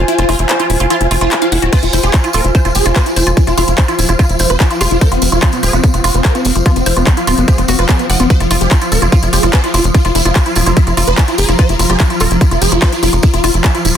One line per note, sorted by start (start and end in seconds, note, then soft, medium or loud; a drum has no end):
0.00 13.97 F4 medium
0.00 13.97 C5 medium
0.00 3.39 G#5 medium
0.08 0.15 F4 medium
0.08 closed hi-hat medium
0.18 0.25 F1 medium
0.18 0.25 F4 medium
0.18 0.24 F4 medium
0.18 closed hi-hat medium
0.29 0.35 F1 loud
0.29 0.35 F4 medium
0.29 0.34 F4 loud
0.29 open hi-hat loud
0.39 0.46 F1 medium
0.39 0.45 F4 medium
0.39 closed hi-hat medium
0.49 0.56 F4 medium
0.49 0.58 C5 medium
0.49 clap loud
0.49 closed hi-hat medium
0.60 0.63 F4 medium
0.60 0.66 F4 medium
0.60 closed hi-hat medium
0.70 0.77 D#1 loud
0.70 0.76 F4 medium
0.70 open hi-hat medium
0.80 0.87 F1 medium
0.80 0.86 F4 medium
0.80 closed hi-hat soft
0.90 0.96 F4 loud
0.90 0.97 F4 loud
0.90 closed hi-hat medium
1.01 1.07 F1 medium
1.01 1.07 F4 medium
1.01 closed hi-hat medium
1.11 1.18 F1 medium
1.11 1.16 F4 medium
1.11 1.17 F4 medium
1.11 open hi-hat loud
1.21 1.28 F1 medium
1.21 1.27 F4 loud
1.21 1.28 F4 medium
1.21 closed hi-hat medium
1.31 1.38 F4 medium
1.31 clap loud
1.31 closed hi-hat medium
1.42 1.48 F4 medium
1.42 1.47 F5 medium
1.42 closed hi-hat medium
1.52 1.59 F1 medium
1.52 1.58 F4 medium
1.52 1.58 F#5 medium
1.52 open hi-hat medium
1.62 1.69 D#1 medium
1.62 1.69 F4 medium
1.62 1.71 F#4 medium
1.62 closed hi-hat medium
1.73 13.97 F3 medium
1.73 1.78 F4 loud
1.73 1.79 C5 loud
1.73 kick loud
1.73 closed hi-hat medium
1.73 tambourine medium
1.73 crash medium
1.83 1.90 F1 medium
1.83 1.89 F4 medium
1.83 closed hi-hat medium
1.83 tambourine soft
1.93 2.00 F1 medium
1.93 1.99 F4 medium
1.93 2.01 C5 medium
1.93 open hi-hat loud
1.93 tambourine loud
2.03 2.10 F1 medium
2.03 2.07 F4 medium
2.03 2.10 G#4 medium
2.03 closed hi-hat medium
2.03 tambourine soft
2.14 2.20 F4 medium
2.14 kick loud
2.14 clap loud
2.14 closed hi-hat medium
2.14 tambourine medium
2.24 2.30 F4 medium
2.24 closed hi-hat medium
2.24 tambourine soft
2.33 2.41 D#1 medium
2.33 2.40 F4 loud
2.33 2.41 A#4 loud
2.33 open hi-hat medium
2.33 tambourine loud
2.44 2.51 F1 medium
2.44 2.51 F4 medium
2.44 closed hi-hat medium
2.44 tambourine soft
2.55 2.61 F4 medium
2.55 2.63 C5 medium
2.55 kick loud
2.55 closed hi-hat medium
2.55 tambourine soft
2.65 2.72 F1 medium
2.65 2.68 F4 medium
2.65 2.71 F4 medium
2.65 closed hi-hat medium
2.65 tambourine soft
2.75 2.82 F1 medium
2.75 2.82 G#4 medium
2.75 open hi-hat loud
2.75 tambourine medium
2.85 2.92 F1 medium
2.85 2.92 F4 medium
2.85 2.91 F4 medium
2.85 closed hi-hat medium
2.85 tambourine soft
2.96 3.01 F4 loud
2.96 3.02 C5 medium
2.96 kick loud
2.96 clap loud
2.96 closed hi-hat medium
2.96 tambourine soft
3.06 3.12 F4 medium
3.06 closed hi-hat medium
3.06 tambourine soft
3.16 3.23 F1 medium
3.16 3.23 F4 medium
3.16 3.25 C5 medium
3.16 open hi-hat loud
3.16 tambourine medium
3.27 3.33 F1 medium
3.27 3.30 F4 medium
3.27 closed hi-hat medium
3.27 tambourine soft
3.37 3.43 F4 medium
3.37 9.97 F5 medium
3.37 kick loud
3.37 closed hi-hat medium
3.37 tambourine soft
3.47 3.54 F1 medium
3.47 3.54 F4 medium
3.47 3.53 F4 medium
3.47 closed hi-hat medium
3.47 tambourine soft
3.57 3.64 F1 loud
3.57 3.64 F4 loud
3.57 3.63 F4 loud
3.57 open hi-hat loud
3.57 tambourine loud
3.68 3.74 F1 medium
3.68 3.74 F4 medium
3.68 closed hi-hat medium
3.68 tambourine soft
3.78 3.84 F4 medium
3.78 3.86 C5 medium
3.78 kick loud
3.78 clap loud
3.78 closed hi-hat medium
3.78 tambourine medium
3.88 3.95 F4 loud
3.88 3.92 F4 medium
3.88 closed hi-hat medium
3.88 tambourine soft
3.99 4.05 D#1 medium
3.99 4.05 F4 medium
3.99 open hi-hat medium
3.99 tambourine loud
4.09 4.16 F1 medium
4.09 4.15 F4 medium
4.09 4.14 F4 medium
4.09 closed hi-hat soft
4.09 tambourine soft
4.19 4.25 F4 loud
4.19 kick loud
4.19 closed hi-hat medium
4.19 tambourine medium
4.29 4.36 F1 medium
4.29 4.36 F4 medium
4.29 closed hi-hat medium
4.29 tambourine soft
4.39 4.46 F1 loud
4.39 4.46 F4 medium
4.39 4.48 C5 medium
4.39 open hi-hat loud
4.39 tambourine medium
4.50 4.57 F1 medium
4.50 4.53 F4 medium
4.50 4.56 C5 medium
4.50 closed hi-hat medium
4.50 tambourine soft
4.60 4.67 F4 medium
4.60 kick loud
4.60 clap loud
4.60 closed hi-hat medium
4.60 tambourine soft
4.70 4.76 F4 medium
4.70 4.77 F4 medium
4.70 closed hi-hat medium
4.70 tambourine soft
4.81 4.88 F1 medium
4.81 4.86 F4 loud
4.81 4.87 G#4 medium
4.81 open hi-hat loud
4.81 tambourine loud
4.91 4.98 F1 medium
4.91 4.97 F4 medium
4.91 closed hi-hat medium
4.91 tambourine soft
5.01 5.08 A#4 medium
5.01 5.10 C5 medium
5.01 kick loud
5.01 closed hi-hat medium
5.01 tambourine medium
5.12 5.18 F1 medium
5.12 5.18 C4 medium
5.12 5.15 F4 medium
5.12 closed hi-hat medium
5.12 tambourine soft
5.22 5.29 F1 medium
5.22 5.28 C4 medium
5.22 open hi-hat loud
5.22 tambourine medium
5.32 5.39 F1 medium
5.32 5.38 F4 medium
5.32 5.39 F4 medium
5.32 closed hi-hat medium
5.32 tambourine soft
5.42 5.49 C4 medium
5.42 5.48 F4 loud
5.42 kick loud
5.42 clap loud
5.42 closed hi-hat medium
5.42 tambourine medium
5.52 5.59 C4 medium
5.52 closed hi-hat soft
5.52 tambourine soft
5.63 5.70 D#1 loud
5.63 5.69 G#4 loud
5.63 5.71 C5 medium
5.63 open hi-hat loud
5.63 tambourine medium
5.73 5.80 F1 medium
5.73 5.80 C4 medium
5.73 5.77 F4 medium
5.73 closed hi-hat soft
5.73 tambourine soft
5.84 5.90 C4 medium
5.84 kick loud
5.84 closed hi-hat medium
5.84 tambourine soft
5.94 6.01 F1 medium
5.94 6.00 C4 medium
5.94 5.99 F4 medium
5.94 closed hi-hat soft
5.94 tambourine soft
6.04 6.11 F1 medium
6.04 6.10 F4 loud
6.04 6.10 F#4 medium
6.04 open hi-hat loud
6.04 tambourine loud
6.14 6.21 F1 medium
6.14 6.21 C4 medium
6.14 closed hi-hat soft
6.14 tambourine soft
6.24 6.31 A#4 medium
6.24 6.33 C5 medium
6.24 kick loud
6.24 clap loud
6.24 closed hi-hat medium
6.24 tambourine medium
6.35 6.41 C4 medium
6.35 6.38 F4 medium
6.35 closed hi-hat medium
6.35 tambourine soft
6.45 6.52 F1 medium
6.45 6.52 C4 medium
6.45 open hi-hat loud
6.45 tambourine medium
6.55 6.62 F1 medium
6.55 6.61 F4 medium
6.55 closed hi-hat medium
6.55 tambourine soft
6.66 6.72 C4 medium
6.66 6.71 F4 loud
6.66 kick loud
6.66 closed hi-hat medium
6.66 tambourine medium
6.76 6.83 F1 medium
6.76 6.82 C4 medium
6.76 closed hi-hat medium
6.76 tambourine soft
6.86 6.93 F1 loud
6.86 6.93 F4 loud
6.86 6.95 C5 medium
6.86 open hi-hat loud
6.86 tambourine loud
6.97 7.03 F1 medium
6.97 7.03 C4 medium
6.97 7.00 F4 medium
6.97 closed hi-hat soft
6.97 tambourine soft
7.07 7.13 C4 medium
7.07 kick loud
7.07 clap loud
7.07 closed hi-hat medium
7.07 tambourine medium
7.17 7.23 F4 medium
7.17 7.23 F4 loud
7.17 closed hi-hat medium
7.17 tambourine soft
7.27 7.34 D#1 medium
7.27 7.34 C4 medium
7.27 7.33 F4 loud
7.27 open hi-hat loud
7.27 tambourine medium
7.38 7.44 F1 medium
7.38 7.44 C4 medium
7.38 closed hi-hat soft
7.38 tambourine soft
7.48 7.54 G#4 loud
7.48 7.56 C5 medium
7.48 kick loud
7.48 closed hi-hat medium
7.48 tambourine medium
7.58 7.65 F1 medium
7.58 7.65 C4 medium
7.58 7.62 F4 medium
7.58 closed hi-hat medium
7.58 tambourine soft
7.68 7.75 F1 loud
7.68 7.75 C4 medium
7.68 7.74 F#4 loud
7.68 open hi-hat loud
7.68 tambourine medium
7.78 7.85 F1 medium
7.78 7.84 F4 medium
7.78 7.85 C5 medium
7.78 closed hi-hat medium
7.78 tambourine soft
7.89 7.95 C4 medium
7.89 7.95 G#4 medium
7.89 kick loud
7.89 clap loud
7.89 closed hi-hat medium
7.89 tambourine medium
7.99 8.06 C4 medium
7.99 closed hi-hat medium
7.99 tambourine soft
8.10 8.16 F1 loud
8.10 8.16 D#5 medium
8.10 8.18 F#5 medium
8.10 open hi-hat loud
8.10 tambourine medium
8.19 8.27 F1 medium
8.19 8.26 C4 medium
8.19 8.25 F4 medium
8.19 closed hi-hat soft
8.19 tambourine soft
8.30 8.36 C5 loud
8.30 kick loud
8.30 closed hi-hat medium
8.30 tambourine soft
8.40 8.47 F1 medium
8.40 8.46 F4 medium
8.40 8.47 F4 medium
8.40 closed hi-hat medium
8.40 tambourine soft
8.51 8.57 F1 loud
8.51 8.56 F4 loud
8.51 8.57 F4 medium
8.51 open hi-hat loud
8.51 tambourine loud
8.61 8.68 F1 medium
8.61 8.67 G#4 loud
8.61 closed hi-hat medium
8.61 tambourine soft
8.71 8.77 F4 medium
8.71 8.78 F4 medium
8.71 kick loud
8.71 clap loud
8.71 closed hi-hat medium
8.71 tambourine medium
8.81 8.88 F4 medium
8.81 8.85 F4 medium
8.81 closed hi-hat medium
8.81 tambourine soft
8.92 8.98 D#1 medium
8.92 8.98 A#4 medium
8.92 open hi-hat medium
8.92 tambourine loud
9.02 9.09 F1 medium
9.02 9.08 F4 medium
9.02 closed hi-hat soft
9.02 tambourine soft
9.12 9.18 F4 loud
9.12 9.19 F4 medium
9.12 kick loud
9.12 closed hi-hat medium
9.12 tambourine medium
9.23 9.29 F1 medium
9.23 9.29 F4 medium
9.23 closed hi-hat medium
9.23 tambourine soft
9.33 9.40 F1 medium
9.33 9.38 F4 medium
9.33 9.39 G#4 medium
9.33 open hi-hat loud
9.33 tambourine medium
9.43 9.50 F1 medium
9.43 9.46 F4 medium
9.43 9.50 F4 medium
9.43 closed hi-hat soft
9.43 tambourine soft
9.53 9.60 C5 medium
9.53 kick loud
9.53 clap loud
9.53 closed hi-hat medium
9.53 tambourine medium
9.64 9.69 F4 medium
9.64 9.70 F4 medium
9.64 closed hi-hat medium
9.64 tambourine soft
9.74 9.81 F1 medium
9.74 9.80 F4 loud
9.74 9.80 F4 medium
9.74 open hi-hat medium
9.74 tambourine medium
9.84 9.91 F1 medium
9.84 closed hi-hat medium
9.84 tambourine soft
9.95 10.00 F4 medium
9.95 10.01 F4 medium
9.95 13.97 A#5 medium
9.95 kick loud
9.95 closed hi-hat medium
9.95 tambourine soft
10.05 10.11 F1 medium
10.05 10.08 F4 medium
10.05 10.11 F4 medium
10.05 closed hi-hat medium
10.05 tambourine soft
10.15 10.22 F1 loud
10.15 10.21 F4 medium
10.15 open hi-hat loud
10.15 tambourine medium
10.25 10.32 F1 medium
10.25 10.31 F4 medium
10.25 10.32 F4 medium
10.25 closed hi-hat medium
10.25 tambourine soft
10.35 10.41 F4 loud
10.35 10.42 F4 medium
10.35 kick loud
10.35 clap loud
10.35 closed hi-hat medium
10.35 tambourine medium
10.46 10.52 F4 medium
10.46 closed hi-hat medium
10.46 tambourine soft
10.56 10.63 D#1 medium
10.56 10.62 F4 medium
10.56 open hi-hat medium
10.56 tambourine loud
10.66 10.73 F1 medium
10.66 10.70 F4 medium
10.66 10.73 F4 medium
10.66 closed hi-hat medium
10.66 tambourine soft
10.77 10.83 F4 loud
10.77 kick loud
10.77 closed hi-hat medium
10.77 tambourine medium
10.87 10.94 F1 medium
10.87 10.93 F4 medium
10.87 closed hi-hat medium
10.87 tambourine soft
10.97 11.04 F1 medium
10.97 11.03 F4 loud
10.97 11.04 F4 medium
10.97 open hi-hat loud
10.97 tambourine medium
11.07 11.14 F1 medium
11.07 11.14 C5 medium
11.07 closed hi-hat medium
11.07 tambourine soft
11.18 11.23 F4 medium
11.18 11.24 F4 medium
11.18 kick loud
11.18 clap loud
11.18 closed hi-hat medium
11.18 tambourine medium
11.28 11.34 F4 medium
11.28 11.31 F4 medium
11.28 closed hi-hat medium
11.28 tambourine soft
11.38 11.45 F1 loud
11.38 11.45 G#4 medium
11.38 open hi-hat loud
11.38 tambourine medium
11.49 11.55 F1 medium
11.49 11.54 F4 medium
11.49 11.55 F4 medium
11.49 closed hi-hat medium
11.49 tambourine soft
11.58 11.64 F4 loud
11.58 11.65 C5 loud
11.58 kick loud
11.58 closed hi-hat medium
11.58 tambourine soft
11.69 11.76 F1 medium
11.69 11.76 F4 medium
11.69 closed hi-hat medium
11.69 tambourine soft
11.79 11.86 F1 loud
11.79 11.85 F4 medium
11.79 11.86 F4 medium
11.79 open hi-hat loud
11.79 tambourine medium
11.90 11.96 F1 medium
11.90 11.93 F4 medium
11.90 11.96 G#4 medium
11.90 closed hi-hat medium
11.90 tambourine soft
11.99 12.06 F4 medium
11.99 kick loud
11.99 clap loud
11.99 closed hi-hat medium
11.99 tambourine medium
12.10 12.17 F4 medium
12.10 12.16 F4 medium
12.10 closed hi-hat medium
12.10 tambourine soft
12.20 12.27 D#1 loud
12.20 12.26 F4 loud
12.20 12.27 A#4 loud
12.20 open hi-hat medium
12.20 tambourine medium
12.31 12.38 F1 medium
12.31 12.37 F4 medium
12.31 closed hi-hat medium
12.31 tambourine soft
12.41 12.47 F4 medium
12.41 kick loud
12.41 closed hi-hat medium
12.41 tambourine medium
12.51 12.58 F1 medium
12.51 12.55 F4 medium
12.51 12.58 F4 medium
12.51 closed hi-hat medium
12.51 tambourine soft
12.61 12.68 F1 loud
12.61 12.68 G#4 medium
12.61 open hi-hat loud
12.61 tambourine medium
12.72 12.79 F1 medium
12.72 12.77 F4 medium
12.72 12.78 F4 medium
12.72 closed hi-hat medium
12.72 tambourine soft
12.82 12.88 F4 loud
12.82 12.89 C5 medium
12.82 kick loud
12.82 clap loud
12.82 closed hi-hat medium
12.82 tambourine soft
12.92 12.99 F4 medium
12.92 closed hi-hat medium
12.92 tambourine soft
13.03 13.09 F1 medium
13.03 13.09 F4 medium
13.03 13.08 F4 medium
13.03 open hi-hat medium
13.03 tambourine medium
13.13 13.20 F1 medium
13.13 13.16 F4 medium
13.13 closed hi-hat medium
13.13 tambourine soft
13.23 13.30 F4 medium
13.23 kick loud
13.23 closed hi-hat medium
13.23 tambourine medium
13.34 13.40 F1 medium
13.34 13.39 F4 medium
13.34 13.40 F4 medium
13.34 closed hi-hat medium
13.34 tambourine soft
13.44 13.51 F1 loud
13.44 13.49 F4 loud
13.44 13.50 F4 loud
13.44 open hi-hat loud
13.44 tambourine medium
13.54 13.61 F1 medium
13.54 13.60 F4 medium
13.54 closed hi-hat medium
13.54 tambourine soft
13.64 13.70 F4 medium
13.64 13.71 F4 medium
13.64 kick loud
13.64 clap loud
13.64 closed hi-hat medium
13.64 tambourine soft
13.74 13.78 F4 medium
13.74 13.81 F4 medium
13.74 closed hi-hat medium
13.74 tambourine soft
13.85 13.92 D#1 loud
13.85 13.91 F4 medium
13.85 open hi-hat medium
13.85 tambourine medium